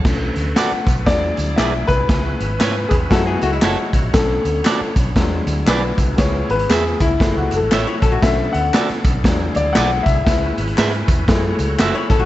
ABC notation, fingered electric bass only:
X:1
M:4/4
L:1/16
Q:"Swing" 1/4=118
K:Bdor
V:1 name="Fingered electric bass" clef=bass
B,,,2 D,,2 z2 B,,,2 E,,2 D,,2 B,,,2 =C,,2 | C,,2 G,,,2 G,,2 E,,2 F,,2 C,,2 F,,, z A,,, ^A,,, | B,,,2 D,,2 z2 B,,,2 E,,2 D,,2 B,,,2 =C,,2 | C,,2 G,,,2 E,,2 C,,2 F,,, C,, F,,, A,,, A,,, z ^A,,,2 |
B,,,2 D,,2 z2 B,,,2 E,,2 D,,2 B,,,2 =C,,2 | C,,2 G,,,2 G,,2 E,,2 F,,2 C,,2 F,,, z A,,, ^A,,, |]